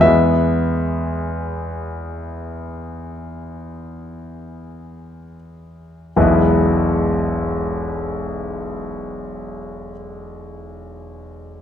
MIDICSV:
0, 0, Header, 1, 2, 480
1, 0, Start_track
1, 0, Key_signature, 4, "major"
1, 0, Tempo, 500000
1, 11151, End_track
2, 0, Start_track
2, 0, Title_t, "Grand piano"
2, 0, Program_c, 0, 0
2, 0, Control_c, 0, 64, 127
2, 0, Note_on_c, 0, 40, 44
2, 8, Note_on_c, 0, 76, 65
2, 9, Note_on_c, 0, 56, 30
2, 20, Note_on_c, 0, 59, 31
2, 28, Note_on_c, 0, 64, 31
2, 58, Control_c, 0, 64, 0
2, 292, Control_c, 0, 64, 127
2, 5137, Note_off_c, 0, 76, 0
2, 5852, Note_off_c, 0, 40, 0
2, 5860, Note_off_c, 0, 56, 0
2, 5865, Note_off_c, 0, 59, 0
2, 5869, Note_off_c, 0, 64, 0
2, 5917, Note_on_c, 0, 28, 47
2, 5918, Note_on_c, 0, 52, 36
2, 5919, Note_on_c, 0, 35, 38
2, 5925, Note_on_c, 0, 56, 37
2, 5925, Note_on_c, 0, 59, 38
2, 5929, Note_on_c, 0, 64, 38
2, 5934, Control_c, 0, 64, 0
2, 6126, Control_c, 0, 64, 127
2, 9509, Note_off_c, 0, 28, 0
2, 9510, Note_off_c, 0, 52, 0
2, 9511, Note_off_c, 0, 35, 0
2, 9517, Note_off_c, 0, 56, 0
2, 9517, Note_off_c, 0, 59, 0
2, 9521, Note_off_c, 0, 64, 0
2, 11151, End_track
0, 0, End_of_file